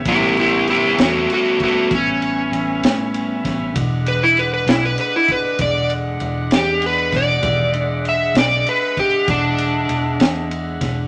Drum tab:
RD |xxxxxxxxxxxx|xxxxxxxxxxxx|xxxxxxxxxxxx|
SD |---o-----o-o|---o-----o-o|---o-----o-o|
BD |o----oo----o|o----oo----o|o----oo----o|